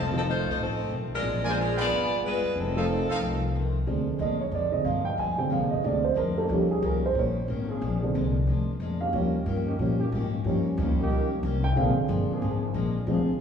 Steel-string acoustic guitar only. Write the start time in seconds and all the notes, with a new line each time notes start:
Already playing: F2 D#3 A3 C4
0.23 F2 D#3 A3 C4
0.57 F2 D#3 A3 C4
0.89 F2 D#3 A3 C4
1.22 A#2 F3 G#3 D4
1.56 A#2 F3 G#3 D4
1.89 G3 B3 F4 G#4
2.22 G3 B3 F4 G#4
2.55 F2 D#3 A3 C4
2.89 F2 D#3 A3 C4
3.22 F2 D#3 A3 C4
3.55 F2 D#3 A3 C4
3.86 A#2 F3 G#3 D4
4.19 A#2 F3 G#3 D4
4.52 A#2 F3 G#3 D4
4.86 A#2 F3 G#3 D4
5.17 A#2 F3 G#3 D4
5.50 A#2 F3 G#3 D4
5.82 A#2 F3 G#3 D4
6.14 A#2 F3 G#3 D4
6.48 D#3 A#3 C#4 G4
6.82 D#3 A#3 C#4 G4
7.16 D#3 A#3 C#4 G4
7.49 D#3 A#3 C#4 G4
7.81 A#2 F3 G#3 D4
8.14 A#2 F3 G#3 D4
8.48 A#2 F3 G#3 D4
8.81 A#2 F3 G#3 D4
9.14 D#3 A#3 C#4 G4
9.46 D#3 A#3 C#4 G4
9.80 D#3 A#3 C#4 G4
10.14 D#3 A#3 C#4 G4
10.47 D#3 A#3 C#4 G4
10.78 D#3 A#3 C#4 G4
11.11 D#3 A#3 C#4 G4
11.44 D#3 A#3 C#4 G4
11.75 A#2 F3 G#3 D4
12.08 A#2 F3 G#3 D4
12.42 A#2 F3 G#3 D4
12.74 A#2 F3 G#3 D4
13.08 D3 C4 F4 G#4